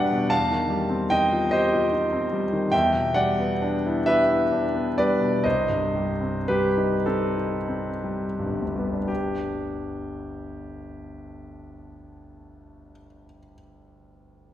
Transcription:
0.00 0.26 E2 soft
0.00 0.12 B2 soft
0.00 0.33 G3 soft
0.00 0.33 B3 soft
0.00 0.33 D4 soft
0.00 0.33 F#4 soft
0.00 0.33 G4 soft
0.00 0.28 D5 medium
0.00 0.32 E5 medium
0.00 0.33 F#5 medium
0.00 0.33 G5 medium
0.00 0.30 A5 medium
0.12 0.31 B2 soft
0.30 2.69 E2 soft
0.30 1.07 F5 medium
0.30 1.11 A5 medium
0.51 0.83 D#3 soft
0.70 1.03 G3 soft
0.89 1.23 C4 soft
1.10 1.44 D#4 soft
1.10 1.49 D#5 medium
1.10 1.51 G5 medium
1.32 1.64 F4 soft
1.51 1.84 G4 soft
1.51 1.89 C5 medium
1.51 1.91 D#5 medium
1.73 2.04 F4 soft
1.92 2.24 D#4 soft
2.13 2.44 C4 soft
2.33 2.65 G3 soft
2.53 2.73 D#3 soft
2.72 5.40 E2 medium
2.72 3.12 E5 medium
2.72 3.15 G5 medium
2.94 3.29 B2 soft
3.14 3.51 G3 soft
3.14 4.02 D5 medium
3.14 4.06 F#5 medium
3.39 3.75 B3 soft
3.62 3.98 D4 soft
3.86 4.21 E4 soft
4.06 4.43 G4 soft
4.06 4.93 B4 medium
4.06 4.97 E5 medium
4.29 4.65 E4 soft
4.52 4.88 D4 soft
4.75 5.11 B3 soft
4.98 5.36 G3 soft
4.98 5.42 B4 medium
4.98 5.45 D5 medium
5.21 5.45 B2 soft
5.44 9.05 C2 soft
5.44 6.45 C5 medium
5.44 6.48 D#5 medium
5.69 6.10 G2 soft
5.95 6.37 G3 soft
6.21 6.65 C4 soft
6.48 6.94 G3 soft
6.48 7.02 G4 medium
6.48 7.06 B4 medium
6.77 7.05 D#4 soft
7.06 7.56 C4 soft
7.06 7.35 D#4 soft
7.06 9.09 A4 medium
7.37 7.89 D#4 soft
7.68 8.25 C4 soft
8.04 8.63 G3 soft
8.39 8.96 G2 soft
8.45 12.91 G1 soft
8.61 13.07 D2 soft
8.76 9.09 G3 soft
8.76 13.23 B3 soft
8.93 13.39 D4 soft
9.08 13.54 G4 soft

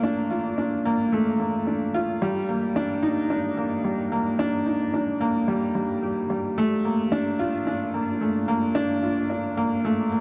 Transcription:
0.00 1.12 A3 medium
0.00 0.85 A#3 loud
0.00 0.03 D4 loud
0.00 0.29 D4 loud
0.00 0.31 F4 loud
0.31 0.57 F4 medium
0.58 0.84 D4 medium
0.85 1.11 A#3 loud
1.12 1.38 A3 medium
1.40 1.55 A#3 medium
1.67 1.83 D4 medium
1.94 2.10 F4 loud
2.22 2.48 G3 loud
2.49 2.75 A#3 medium
2.76 3.02 D4 loud
3.03 3.29 D#4 loud
3.30 3.56 D4 medium
3.57 3.83 A#3 medium
3.84 4.11 G3 medium
4.12 4.28 A#3 loud
4.39 4.65 D4 loud
4.66 4.93 D#4 medium
4.94 5.20 D4 medium
5.21 5.47 A#3 loud
5.48 5.74 G3 medium
5.75 6.01 G3 medium
6.03 6.29 G4 medium
6.30 6.56 G3 medium
6.58 6.84 A3 loud
6.85 7.11 A#3 medium
7.12 7.38 D4 loud
7.39 7.65 F4 loud
7.67 7.93 D4 medium
7.94 8.20 A#3 medium
8.21 8.47 A3 medium
8.48 8.64 A#3 loud
8.75 9.01 D4 loud
9.03 9.29 F4 medium
9.30 9.56 D4 medium
9.57 9.83 A#3 medium
9.85 10.11 A3 medium
10.12 10.21 A#3 medium

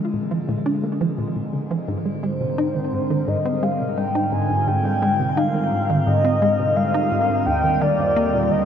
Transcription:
0.00 8.65 D3 medium
0.00 1.88 G#3 medium
0.00 1.88 C4 medium
0.00 1.88 F4 medium
0.00 1.89 A#4 medium
0.14 0.22 A#2 medium
0.31 0.40 F3 loud
0.49 0.57 A#2 loud
0.66 0.75 D4 loud
0.83 0.96 A#3 medium
1.01 1.10 F3 loud
1.18 1.24 A#2 medium
1.36 1.49 A#2 medium
1.53 1.62 D3 medium
1.71 1.79 F3 loud
1.88 7.46 G#2 medium
1.88 1.97 G#2 loud
2.06 2.11 G#3 medium
2.23 2.32 G#3 loud
2.23 3.30 C5 loud
2.31 8.65 C4 medium
2.31 8.65 A#4 medium
2.41 2.49 C3 medium
2.58 2.71 D#4 loud
2.75 2.81 D#3 medium
2.93 3.01 G#2 medium
3.01 8.65 G3 medium
3.10 3.19 D#3 loud
3.28 3.36 G#2 loud
3.28 3.64 D#5 loud
3.45 3.54 C4 loud
3.63 3.71 G#3 loud
3.63 3.99 F5 loud
3.80 3.89 C3 medium
3.97 4.06 G#3 medium
3.97 4.34 G5 loud
4.15 4.28 D#4 loud
4.32 4.41 G#2 medium
4.32 4.69 G#5 loud
4.37 8.65 F4 medium
4.50 4.55 G#2 medium
4.67 4.76 G#2 loud
4.67 5.38 G5 loud
4.85 4.90 G#3 medium
5.02 5.11 G#3 loud
5.20 5.28 C3 medium
5.37 5.50 D#4 loud
5.37 6.06 F5 loud
5.55 5.60 D#3 medium
5.72 5.81 G#2 medium
5.90 5.98 D#3 loud
6.06 6.16 G#2 loud
6.06 6.77 D#5 loud
6.25 6.33 C4 loud
6.42 6.50 G#3 loud
6.59 6.68 C3 medium
6.76 6.85 G#3 medium
6.76 7.47 F5 loud
6.94 7.07 D#4 loud
7.12 7.20 G#2 medium
7.29 7.34 G#2 medium
7.46 7.55 D#2 loud
7.46 8.65 D#2 medium
7.46 7.83 G5 loud
7.64 7.69 D#3 medium
7.81 7.90 D#3 loud
7.81 8.53 D5 loud
7.99 8.07 G2 medium
8.16 8.29 A#3 loud
8.34 8.39 A#2 medium
8.51 8.60 D#2 medium
8.51 8.65 D#5 medium

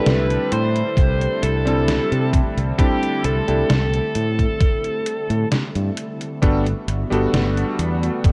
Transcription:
0.00 8.32 D3 medium
0.00 1.60 G3 medium
0.00 8.32 G3 medium
0.00 8.32 A3 medium
0.00 1.60 C4 medium
0.00 6.39 C4 medium
0.00 1.61 D4 medium
0.00 1.61 E4 medium
0.00 6.39 E4 medium
0.00 1.62 A4 loud
0.00 0.52 B4 loud
0.06 0.36 C2 medium
0.06 snare loud
0.06 closed hi-hat medium
0.30 closed hi-hat soft
0.52 0.81 A2 medium
0.52 1.46 C5 loud
0.52 closed hi-hat medium
0.76 closed hi-hat soft
0.97 1.26 C2 medium
0.97 kick loud
0.97 closed hi-hat medium
1.21 closed hi-hat soft
1.43 1.98 C2 medium
1.43 2.30 A4 medium
1.43 closed hi-hat medium
1.65 2.73 G3 medium
1.65 2.74 C4 medium
1.65 2.74 D4 medium
1.65 2.74 E4 medium
1.65 2.75 A4 medium
1.65 closed hi-hat soft
1.88 snare loud
1.88 closed hi-hat medium
2.12 2.40 C3 medium
2.12 closed hi-hat soft
2.33 kick loud
2.33 closed hi-hat medium
2.57 2.71 C2 medium
2.57 closed hi-hat soft
2.78 3.42 G3 medium
2.78 3.42 C4 medium
2.78 3.43 D4 medium
2.78 3.43 E4 medium
2.78 3.25 G4 loud
2.78 3.43 A4 medium
2.78 kick loud
2.78 closed hi-hat medium
3.03 closed hi-hat soft
3.24 3.39 C2 medium
3.24 3.69 A4 loud
3.24 closed hi-hat medium
3.48 3.62 C2 medium
3.48 3.68 G3 medium
3.48 3.68 C4 medium
3.48 3.68 D4 medium
3.48 3.68 E4 medium
3.48 3.68 A4 medium
3.48 closed hi-hat soft
3.70 3.99 C2 medium
3.70 5.48 A4 medium
3.70 snare loud
3.70 closed hi-hat medium
3.94 closed hi-hat soft
4.15 4.45 A2 medium
4.15 closed hi-hat medium
4.39 kick medium
4.39 closed hi-hat soft
4.61 kick loud
4.61 closed hi-hat medium
4.84 closed hi-hat soft
5.06 closed hi-hat loud
5.30 5.44 A2 medium
5.30 closed hi-hat soft
5.52 snare loud
5.52 closed hi-hat medium
5.75 5.89 G2 medium
5.75 closed hi-hat soft
5.97 closed hi-hat medium
6.21 closed hi-hat soft
6.42 6.72 G1 medium
6.42 6.64 G3 medium
6.42 6.64 B3 medium
6.42 8.32 B3 medium
6.42 6.64 D4 medium
6.42 8.32 F#4 medium
6.42 6.64 F#4 medium
6.42 6.64 A4 loud
6.42 kick loud
6.42 closed hi-hat medium
6.66 closed hi-hat soft
6.88 7.03 G1 medium
6.88 closed hi-hat medium
7.10 7.25 G1 medium
7.10 8.32 G3 medium
7.10 8.32 B3 medium
7.10 8.32 D4 medium
7.10 8.32 F#4 medium
7.10 8.32 A4 loud
7.10 closed hi-hat soft
7.33 7.63 G1 medium
7.33 snare loud
7.33 closed hi-hat medium
7.57 closed hi-hat soft
7.79 8.08 E2 medium
7.79 closed hi-hat medium
8.03 closed hi-hat soft
8.24 8.32 G1 loud
8.24 kick loud
8.24 closed hi-hat medium

